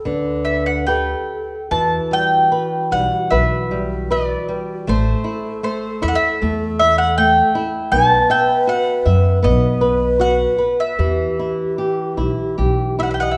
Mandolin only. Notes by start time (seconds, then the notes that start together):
Already playing: G5
0.45 E5
0.66 F#5
0.87 G5
1.71 A5
2.13 G5
2.92 F#5
3.30 E5
4.11 D5
4.89 C5
5.64 C5
6.03 E5
6.08 F#5
6.15 E5
6.79 E5
6.98 F#5
7.18 G5
7.92 A5
8.31 G5
8.69 F#5
9.44 D#5
10.21 F#5
10.80 E5
13.00 E5 F#5
13.11 E5 G5
13.20 D#5 F#5
13.31 E5